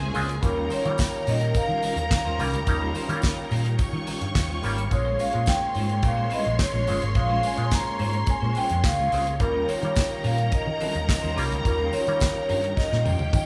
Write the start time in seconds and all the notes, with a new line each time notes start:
Already playing: C#2 C#3 G#3 A#3 G#4 G#5
0.00 G#3 C#4 F4 C#5
0.14 C#2 G#3 C4 C#4 F4 C5, open hi-hat, tambourine
0.27 muted clean electric guitar stroke, closed hi-hat
0.41 D#2 D#3 G3 A#3 C#4 F4 G4 A#4 A#5, muted clean electric guitar stroke, kick, closed hi-hat, tambourine
0.56 G3 C#4 F4 A#4
0.70 G3 C#4 F4 C5 C#5, open hi-hat, tambourine
0.84 D#3 F#3 A#3 C#4 F4, muted clean electric guitar stroke, closed hi-hat
0.90 G3
0.98 muted clean electric guitar stroke, kick, snare, clap, closed hi-hat, tambourine
1.14 muted clean electric guitar stroke
1.27 A#2 G3 C#4 F4 A#4 D#5, open hi-hat
1.41 muted clean electric guitar stroke, closed hi-hat
1.54 F5, muted clean electric guitar stroke, kick, closed hi-hat, tambourine
1.68 D#3 G3 C#4 F4 A#4
1.83 G3 C#4 F4 A#4, open hi-hat, tambourine
1.96 D#2, muted clean electric guitar stroke, closed hi-hat
2.11 kick, snare, clap, closed hi-hat, tambourine
2.25 D#2 G3 C#4 F4 C5
2.39 C2 G3 A#3 C#4 F4 A#4, open hi-hat, tambourine
2.53 C#2, muted clean electric guitar stroke, closed hi-hat
2.67 D#2 G3 A#3 C#4 D#4, muted clean electric guitar stroke, kick, closed hi-hat, tambourine
2.81 G3 C#4 F4 A#4
2.94 G3 C#4 F4 C5, open hi-hat, tambourine
3.08 D#3 G3 A#3 C#4 E4, muted clean electric guitar stroke, closed hi-hat
3.16 F4
3.22 muted clean electric guitar stroke, kick, snare, clap, closed hi-hat, tambourine
3.37 muted clean electric guitar stroke
3.50 A#2 G3 C#4 F4 A#4, open hi-hat, tambourine
3.65 muted clean electric guitar stroke, closed hi-hat
3.79 C#5 C#6, muted clean electric guitar stroke, kick, closed hi-hat, tambourine
3.93 D#3 G3 C#4 F4 A#4
4.07 G3 C#4 F4 A#4, open hi-hat, tambourine
4.21 G2, muted clean electric guitar stroke, closed hi-hat
4.35 D#2, muted clean electric guitar stroke, kick, snare, clap, closed hi-hat, tambourine
4.49 G3 C#4 F4 C5
4.63 G#1 G3 A#3 C#4 F4 A#4, open hi-hat, tambourine
4.78 muted clean electric guitar stroke, closed hi-hat
4.90 A#1 G#3 A#3 C#4 F4 C5 C#5 C6, muted clean electric guitar stroke, kick, closed hi-hat, tambourine
5.05 G#3 C#4 F4 C5
5.19 G#3 C#4 F4 C#5 F5, open hi-hat, tambourine
5.33 A#2 G#3 C#4 F4 C5, muted clean electric guitar stroke, closed hi-hat
5.46 G5, muted clean electric guitar stroke, kick, snare, clap, closed hi-hat, tambourine
5.61 muted clean electric guitar stroke
5.75 G#2 G#3 C#4 F4 C5, open hi-hat, tambourine
5.89 muted clean electric guitar stroke, closed hi-hat
6.03 A#2 F5, muted clean electric guitar stroke, kick, closed hi-hat, tambourine
6.17 G#3 C#4 F4 C5
6.30 G#3 C#4 F4 C5 D#5, open hi-hat, tambourine
6.45 A#1, muted clean electric guitar stroke, closed hi-hat
6.59 C#5, muted clean electric guitar stroke, kick, snare, clap, closed hi-hat, tambourine
6.73 A#1 G#3 C#4 F4 C#5
6.87 G1 G#3 C4 C#4 F4 C5, open hi-hat, tambourine
7.01 G#1, muted clean electric guitar stroke, closed hi-hat
7.15 A#1 G#3 C#4 F4 C5 F5, muted clean electric guitar stroke, kick, closed hi-hat
7.29 G#3 C#4 F4 C5
7.43 G#3 C#4 F4 C#5 G#5, open hi-hat, tambourine
7.56 A#2 G#3 C#4 F4 C5, muted clean electric guitar stroke, closed hi-hat
7.71 A#5, muted clean electric guitar stroke, kick, snare, clap, closed hi-hat, tambourine
7.86 muted clean electric guitar stroke
7.99 G#2 G#3 C#4 F4 C5, open hi-hat
8.13 muted clean electric guitar stroke, closed hi-hat
8.27 G#5, muted clean electric guitar stroke, kick, closed hi-hat, tambourine
8.42 A#2 G#3 C#4 F4 C5
8.55 G#3 C#4 F4 C5 G5, open hi-hat, tambourine
8.69 F2, muted clean electric guitar stroke, closed hi-hat
8.84 C#2 F5, muted clean electric guitar stroke, kick, snare, clap, closed hi-hat, tambourine
8.99 G#3 C#4 F4 C#5
9.12 C#2 G#3 C4 C#4 F4 G4 C5, open hi-hat, tambourine
9.26 muted clean electric guitar stroke, closed hi-hat
9.39 D#2 D#3 G3 A#3 C#4 F4 G4 A#4 A#5, muted clean electric guitar stroke, kick, closed hi-hat
9.54 G3 C#4 F4 A#4
9.68 G3 C#4 F4 C5 C#5, open hi-hat, tambourine
9.82 D#3 G3 A#3 C#4 F4, muted clean electric guitar stroke, closed hi-hat
9.95 kick, snare, clap, closed hi-hat, tambourine
10.10 muted clean electric guitar stroke
10.23 A#2 G3 C#4 F4 A#4 F5, open hi-hat, tambourine
10.37 muted clean electric guitar stroke, closed hi-hat
10.52 D#5, muted clean electric guitar stroke, kick, closed hi-hat, tambourine
10.66 D#3, muted clean electric guitar stroke
10.80 G3 C#4 F4 A#4, open hi-hat, tambourine
10.94 D#2, muted clean electric guitar stroke, closed hi-hat
11.09 muted clean electric guitar stroke, kick, snare, clap, closed hi-hat, tambourine
11.22 D#2 G3 C#4 F4 C5
11.35 C2 G3 A#3 C#4 F4 A#4, open hi-hat, tambourine
11.50 C#2, muted clean electric guitar stroke, closed hi-hat
11.64 D#2 G3 A#3 C#4 F4 A#4, muted clean electric guitar stroke, kick, closed hi-hat, tambourine
11.78 G3 C#4 F4 A#4
11.92 G3 C#4 F4 C5 C#5, open hi-hat, tambourine
12.07 D#3 G3 A#3 C#4 F4, muted clean electric guitar stroke, closed hi-hat
12.20 muted clean electric guitar stroke, kick, snare, clap, closed hi-hat, tambourine
12.35 muted clean electric guitar stroke
12.48 G2 G3 C#4 F4 A#4, open hi-hat, tambourine
12.62 muted clean electric guitar stroke, closed hi-hat
12.76 D#5, muted clean electric guitar stroke, kick, snare, tambourine
12.91 A#2 G3 C#4 F4 A#4, snare
13.04 F2 G3 C#4 F4 G4 A#4 G5, high tom, tambourine
13.18 D#2, muted clean electric guitar stroke, high tom
13.32 D#3, muted clean electric guitar stroke, kick, mid tom, tambourine